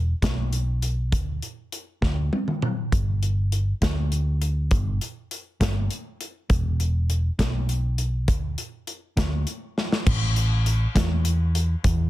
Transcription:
Already playing: picked electric bass E1
0.22 picked electric bass B1, kick, snare, closed hi-hat
0.53 closed hi-hat
0.82 closed hi-hat
1.12 picked electric bass D2, kick, closed hi-hat
1.42 closed hi-hat
1.72 closed hi-hat
2.02 picked electric bass D2, kick, snare
2.33 high tom
2.48 mid tom
2.62 mid tom
2.92 picked electric bass G1, kick, closed hi-hat
3.23 closed hi-hat
3.52 closed hi-hat
3.82 picked electric bass D2, kick, snare, closed hi-hat
4.12 closed hi-hat
4.42 closed hi-hat
4.71 picked electric bass G1, kick, closed hi-hat
5.01 closed hi-hat
5.31 closed hi-hat
5.60 picked electric bass G1, kick, snare, closed hi-hat
5.91 closed hi-hat
6.21 closed hi-hat
6.49 picked electric bass E1, kick, closed hi-hat
6.80 closed hi-hat
7.10 closed hi-hat
7.39 picked electric bass B1, kick, snare, closed hi-hat
7.69 closed hi-hat
7.98 closed hi-hat
8.28 picked electric bass D2, kick, closed hi-hat
8.58 closed hi-hat
8.87 closed hi-hat
9.17 picked electric bass D2, kick, snare, closed hi-hat
9.47 closed hi-hat
9.78 snare
9.92 snare
10.06 picked electric bass A1, kick, crash
10.36 closed hi-hat
10.66 closed hi-hat
10.95 picked electric bass E2, kick, snare, closed hi-hat
11.25 closed hi-hat
11.55 closed hi-hat
11.84 picked electric bass E2, kick, closed hi-hat

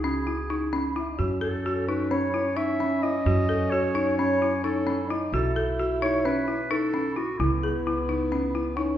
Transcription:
Already playing: upright bass C#2, french horn F#4
0.04 marimba C#4, clarinet G#4
0.27 marimba E4
0.50 marimba D#4
0.73 marimba C#4
0.95 french horn E4, marimba E4
1.11 french horn D#4
1.18 upright bass F#2, french horn C#4, marimba F#4
1.41 marimba A4, clarinet A4
1.66 marimba F#4
1.87 marimba D#4, clarinet B4
2.11 marimba C#4, clarinet C#5
2.34 marimba E4
2.57 marimba D#4, clarinet E5
2.80 marimba C#4
3.02 marimba E4, clarinet D#5
3.26 upright bass F#2, marimba F#4
3.49 marimba A4
3.70 marimba F#4, clarinet C#5
3.95 marimba D#4
4.17 marimba C#4, clarinet C#5
4.42 marimba E4
4.64 marimba D#4, clarinet A4
4.87 marimba C#4
5.10 french horn D#4, marimba E4
5.32 upright bass B1, french horn E4, marimba F#4, clarinet A4
5.56 marimba A4
5.80 marimba F#4
6.02 marimba D#4, clarinet C#5
6.25 marimba C#4, clarinet B4
6.48 marimba E4
6.71 marimba D#4, clarinet A4
6.94 marimba C#4
7.16 marimba E4, clarinet F#4
7.39 upright bass C#2, french horn B3, clarinet E4, marimba E4
7.63 marimba G#4
7.87 marimba E4
8.09 marimba D#4
8.32 marimba C#4
8.55 marimba E4
8.77 french horn C#4, marimba D#4

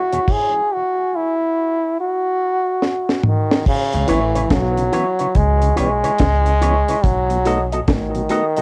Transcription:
Already playing: trombone F#4
0.12 tonewheel organ E2 B2, clean electric guitar E4 G#4 C#5, closed hi-hat
0.28 trombone G#4, kick, crash
0.74 trombone F#4
1.16 trombone E4
2.00 trombone F#4
2.82 snare
3.09 snare
3.23 trombone D#3, mid tom
3.51 snare
3.66 trombone C#3, kick, crash
3.93 upright bass C#2, tonewheel organ C#3, closed hi-hat
4.07 upright bass A1, tonewheel organ E3 B3 C#4, trombone E3, clean electric guitar E4 B4 C#5, closed hi-hat
4.35 tonewheel organ C#3, clean electric guitar E4 B4 C#5, closed hi-hat
4.50 upright bass B1, trombone F#3, kick, snare, closed hi-hat
4.77 tonewheel organ C#3, closed hi-hat
4.92 tonewheel organ E3 B3 C#4, clean electric guitar E4 B4 C#5, closed hi-hat
5.19 tonewheel organ C#3, clean electric guitar E4 B4 C#5, closed hi-hat
5.35 upright bass C#2, trombone G#3, kick, closed hi-hat
5.62 tonewheel organ C#3, closed hi-hat
5.76 upright bass B1, tonewheel organ E3 B3 C#4, trombone G#3, clean electric guitar E4 B4 C#5, closed hi-hat
6.03 tonewheel organ C#3, clean electric guitar E4 B4 C#5, closed hi-hat
6.18 upright bass C#2, kick, snare, closed hi-hat
6.46 tonewheel organ C#3, closed hi-hat
6.61 tonewheel organ E3 B3 C#4, clean electric guitar E4 B4 C#5, closed hi-hat
6.88 tonewheel organ C#3, clean electric guitar E4 B4 C#5, closed hi-hat
7.04 upright bass B1, trombone F#3, kick, closed hi-hat
7.30 tonewheel organ B2 F#3, closed hi-hat
7.45 tonewheel organ A3 B3 D#4, clean electric guitar F#4 A4 D#5, closed hi-hat
7.72 tonewheel organ B2 F#3, clean electric guitar F#4 A4 D#5, closed hi-hat
7.88 upright bass A1, trombone D#3, kick, snare, closed hi-hat
8.15 tonewheel organ B2 F#3, closed hi-hat
8.29 tonewheel organ A3 B3 D#4, clean electric guitar F#4 A4 D#5, closed hi-hat
8.57 tonewheel organ B2 F#3, clean electric guitar F#4 A4 D#5, closed hi-hat

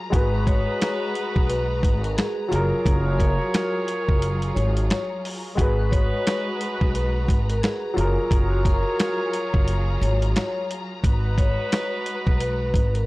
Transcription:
Already playing: string section F4 A#5
0.10 upright bass G#1, upright piano G#3 F#4, string section G#3 F#4 B4, saxophone section D#4 F#4 B4, kick, closed hi-hat
0.14 upright piano G#4 B4
0.34 vibraphone B4
0.47 vibraphone C#5, kick, closed hi-hat
0.82 snare, closed hi-hat
1.15 closed hi-hat
1.36 upright bass B1, kick
1.49 vibraphone B4, closed hi-hat
1.83 upright bass G#1, kick, closed hi-hat
2.03 vibraphone A#4, closed hi-hat
2.17 vibraphone G#4, snare, closed hi-hat
2.48 upright bass F#1, upright piano F#3 F4, string section F#3 F4 G#4, saxophone section G#4 A#4 C#5
2.53 upright piano G#4 A#4, closed hi-hat
2.86 upright bass F#1, kick, closed hi-hat
3.06 vibraphone F#4
3.19 vibraphone A#4, kick, closed hi-hat
3.54 snare, closed hi-hat
3.88 closed hi-hat
4.09 upright bass F#1, kick
4.22 closed hi-hat
4.42 closed hi-hat
4.55 upright bass G#1, vibraphone C#5, closed hi-hat
4.77 closed hi-hat
4.90 vibraphone C#5, snare, closed hi-hat
5.25 open hi-hat
5.55 upright bass G#1, upright piano G#3 F#4, string section G#3 F#4 B4 A#5, saxophone section D#4 F#4 B4, kick, closed hi-hat
5.59 upright piano G#4 B4
5.79 vibraphone B4
5.91 vibraphone C#5, kick, closed hi-hat
6.27 snare, closed hi-hat
6.61 closed hi-hat
6.81 upright bass B1, kick
6.95 vibraphone B4, closed hi-hat
7.28 upright bass G#1, kick, closed hi-hat
7.50 vibraphone A#4, closed hi-hat
7.62 vibraphone G#4, snare, closed hi-hat
7.94 upright bass F#1, upright piano F#3 F4, string section F#3 F4 G#4, saxophone section G#4 A#4 C#5
7.98 upright piano G#4 A#4, closed hi-hat
8.31 upright bass F#1, kick, closed hi-hat
8.51 vibraphone F#4
8.65 vibraphone A#4, kick, closed hi-hat
9.00 snare, closed hi-hat
9.33 closed hi-hat
9.54 upright bass F#1, kick
9.68 closed hi-hat
10.01 upright bass G#1, vibraphone C#5, closed hi-hat
10.22 closed hi-hat
10.35 vibraphone C#5, snare, closed hi-hat
10.71 closed hi-hat
11.04 upright bass G#1, string section G#3 F#4 B4, saxophone section D#4 F#4 B4, kick, closed hi-hat
11.25 vibraphone B4
11.38 vibraphone C#5, kick, closed hi-hat
11.72 snare, closed hi-hat
12.06 closed hi-hat
12.27 upright bass B1, kick
12.40 vibraphone B4, closed hi-hat
12.74 upright bass G#1, kick, closed hi-hat
12.94 vibraphone A#4, closed hi-hat

